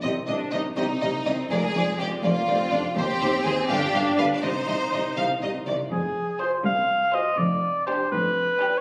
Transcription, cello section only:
X:1
M:6/8
L:1/8
Q:3/8=82
K:Cm
V:1 name="Cello section" clef=bass
C, C, C, C, C, C, | F,, F,, F,, F,, F,, F,, | E,, E,, E,, G,, G,, G,, | C, C, C, C, C, C, |
[K:Fm] F,,3 C,,3 | F,,3 F,,3 |]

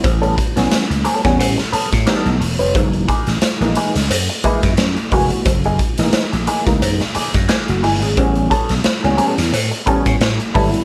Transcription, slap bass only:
X:1
M:4/4
L:1/16
Q:"Swing 16ths" 1/4=88
K:F#mix
V:1 name="Slap bass" clef=bass
=A,,,2 z B,,, z C,, z E,, =A,, z2 A,, z B,,, E,,, ^E,,, | F,,,2 z =A,,, z ^A,,, z C,, F,, z2 F,, F,, z ^E,,, z | F,,,2 z =A,,, z ^A,,, z C,, F,, z2 F,, z F,,, =G,,, ^G,,, | =A,,,2 z B,,, z C,, z E,, =A,, z2 A,, A,, z G,,, z |]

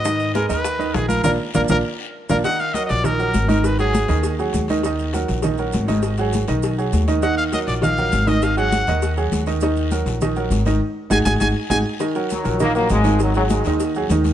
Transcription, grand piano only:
X:1
M:4/4
L:1/8
Q:1/4=201
K:Bbphr
V:1 name="Grand piano"
[E,Ee]2 [A,Ac] [E,Ee]2 [E,Ee]2 [F,FB] | [B,=DF] z [B,DF] [B,DF] z3 [B,DF] | [K:Ebm] [E,Ee]2 [G,GB]2 [E,Ee] [G,GB]2 [E,Ee]- | [E,Ee] [G,GA]2 [E,Ee]2 [G,GA]2 [E,Ee] |
[E,Ee]2 [G,GB]2 [E,Ee] [G,GB]2 [E,Ee]- | [E,Ee] [G,GA]2 [E,Ee]2 [G,GA]2 [E,Ee] | [E,Ee]2 [G,GB]2 [E,Ee] [G,GB]2 [E,Ee]- | [E,Ee] [G,GA]2 [E,Ee]2 [G,GA]2 [E,Ee] |
[E,Ee]2 [G,GB]2 [E,Ee] [G,GB]2 [E,Ee] | z2 [EGA] [EGA] [EGA] z [EGA] z | [E,Ee] [G,GB]2 [G,GB] [E,Ee] [G,GB]2 [E,Ee]- | [E,Ee] [G,GA]2 [E,Ee]2 [G,GA] [E,Ee]2 |]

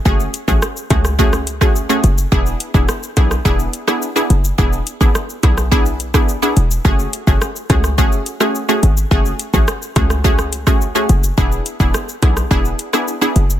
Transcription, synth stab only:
X:1
M:4/4
L:1/16
Q:1/4=106
K:F#m
V:1 name="Synth stab"
[A,CFG] z2 [A,CFG] z2 [A,CFG] z [A,CFG] z2 [A,CFG] z [A,CFG] z2 | [B,DEG]3 [B,DEG] z2 [B,DEG] z [B,DEG]3 [B,DEG] z [B,DEG] z2 | [B,DEG] z2 [B,DEG] z2 [B,DEG] z [B,DEG] z2 [B,DEG] z [B,DEG] z2 | [A,CFG]3 [A,CFG] z2 [A,CFG] z [A,CFG]3 [A,CFG] z [A,CFG] z2 |
[A,CFG] z2 [A,CFG] z2 [A,CFG] z [A,CFG] z2 [A,CFG] z [A,CFG] z2 | [B,DEG]3 [B,DEG] z2 [B,DEG] z [B,DEG]3 [B,DEG] z [B,DEG] z2 |]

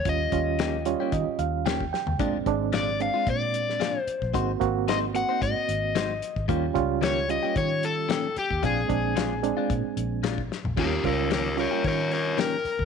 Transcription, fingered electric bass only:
X:1
M:4/4
L:1/16
Q:"Swing 16ths" 1/4=112
K:Ebmix
V:1 name="Fingered electric bass" clef=bass
E,,2 E,,6 E, z E,,4- E,, E,, | B,,,2 A,,,6 B,,6 z B,,, | A,,,2 A,,,6 A,, z A,,,4- A,,, A,,, | E,,2 D,,6 E,6 z E,, |
B,,,2 B,,,6 B,, z B,,,4- B,,, B,,, | E,,2 D,,6 E,6 z E,, |]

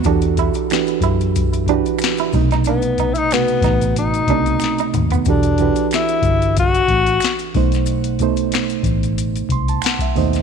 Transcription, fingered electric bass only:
X:1
M:4/4
L:1/16
Q:"Swing 16ths" 1/4=92
K:Em
V:1 name="Fingered electric bass" clef=bass
E,,3 z3 F,,4- F,, z3 B,,,2- | B,,,3 z3 A,,,4 C,,2 z2 ^D,,2 | E,,,3 z3 G,,,4 A,,,2 z2 B,,,2- | B,,,3 z3 A,,,4 C,,2 z2 ^D,,2 |]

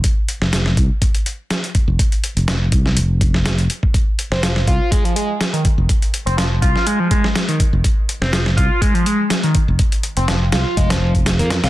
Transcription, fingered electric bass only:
X:1
M:4/4
L:1/16
Q:"Swing 16ths" 1/4=123
K:Fm
V:1 name="Fingered electric bass" clef=bass
z3 F,,,3 C,, z8 F,,, | z3 F,,,3 C,,2 F,,,6 z2 | z3 F,,,3 C,, z8 F,,, | z3 F,,,3 C,, z8 F,,, |
z3 F,,,3 C,, z8 F,,, | z3 F,,,3 C,, z F,,,4- F,,, F,,2 C,, |]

